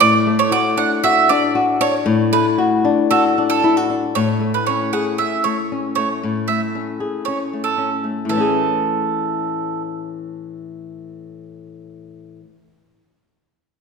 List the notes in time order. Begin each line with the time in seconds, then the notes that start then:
0.00 A2 D5
0.27 A3
0.39 C#5
0.51 F#4 D5
0.77 D4 F#5
1.04 F#4 E5
1.29 D4 D5
1.55 F#4
1.81 D4 C#5
2.06 A2
2.33 A3 B4
2.58 F#4
2.84 D4
3.11 F#4 A4
3.38 D4
3.50 A4
3.64 E4
3.77 F#4
3.90 D4
4.15 A2 C#5
4.40 A3
4.54 B4
4.67 C#4 C#5
4.93 G#4 F#5
5.18 C#4 E5
5.44 A3 C#5
5.72 C#4
5.95 A3 C#5
6.23 A2
6.48 A3 E5
6.75 C#4
7.00 G#4
7.25 C#4 C#5
7.53 A3
7.64 A4
7.78 C#4
8.04 A3
8.25 A2
8.29 E3 A4
8.33 A3 C#4
8.40 G#4